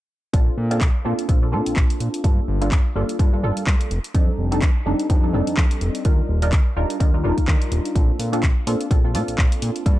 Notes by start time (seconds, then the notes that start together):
0.33 A#1 A#3 C4 D4 F4 A4, kick, closed hi-hat
0.58 A#2
0.71 A#3 C4 D4 F4 A4, closed hi-hat
0.81 A#1, kick, clap, closed hi-hat
1.05 A#2 A#3 C4 D4 F4 A4
1.19 closed hi-hat
1.29 A#1 A#3 C4 D4 F4 A4, kick, closed hi-hat
1.42 A#3 C4 D4 F4 A4
1.52 A#2 A#3 C4 D4 F4 A4
1.66 A#1, closed hi-hat
1.76 A#1, kick, clap
1.90 closed hi-hat
2.00 A#2, closed hi-hat
2.14 closed hi-hat
2.24 G2 G3 A#3 D4 F4 A4, kick, closed hi-hat
2.48 G1
2.61 G3 A#3 D4 F4 A4, closed hi-hat
2.72 G2, kick, clap, closed hi-hat
2.95 G1 G3 A#3 D4 F4 A4
3.09 closed hi-hat
3.19 G2 G3 A#3 D4 F4 A4, kick, closed hi-hat
3.33 G3 A#3 D4 F4 A4
3.43 G1 G3 A#3 D4 F4 A4
3.57 G2, closed hi-hat
3.67 G2, kick, clap
3.81 closed hi-hat
3.91 F1, closed hi-hat
4.04 closed hi-hat
4.14 F2 G3 C4 D4 D#4 A4, kick, closed hi-hat
4.38 F1
4.51 G3 C4 D4 D#4 A4, closed hi-hat
4.62 F2, kick, clap, closed hi-hat
4.86 F1 G3 C4 D4 D#4 A4
5.00 closed hi-hat
5.10 F2 G3 C4 D4 D#4 A4, kick, closed hi-hat
5.23 G3 C4 D4 D#4 A4
5.33 F1 G3 C4 D4 D#4 A4
5.47 F2, closed hi-hat
5.57 F2, kick, clap
5.71 closed hi-hat
5.81 F1, closed hi-hat
5.95 closed hi-hat
6.05 D#2 G3 D4 D#4 F4 A#4, kick, closed hi-hat
6.29 D#1
6.42 G3 D4 D#4 F4 A#4, closed hi-hat
6.52 D#2, kick, clap, closed hi-hat
6.76 D#1 G3 D4 D#4 F4 A#4
6.90 closed hi-hat
7.00 D#2 G3 D4 D#4 F4 A#4, kick, closed hi-hat
7.14 G3 D4 D#4 F4 A#4
7.23 D#1 G3 D4 D#4 F4 A#4
7.38 D#2, kick, closed hi-hat
7.48 D#2, kick, clap
7.62 closed hi-hat
7.72 D#1, closed hi-hat
7.85 closed hi-hat
7.95 A#1 A#3 C4 D4 F4 A4, kick, closed hi-hat
8.19 A#2, open hi-hat
8.32 A#3 C4 D4 F4 A4, closed hi-hat
8.43 A#1, kick, clap, closed hi-hat
8.67 A#2 A#3 C4 D4 F4 A4, open hi-hat
8.81 closed hi-hat
8.91 A#1 A#3 C4 D4 F4 A4, kick, closed hi-hat
9.04 A#3 C4 D4 F4 A4
9.14 A#2 A#3 C4 D4 F4 A4, open hi-hat
9.28 A#1, closed hi-hat
9.38 A#1, kick, clap
9.52 closed hi-hat
9.62 A#2, open hi-hat
9.76 closed hi-hat
9.86 G2 G3 A#3 D4 F4 A4, kick, closed hi-hat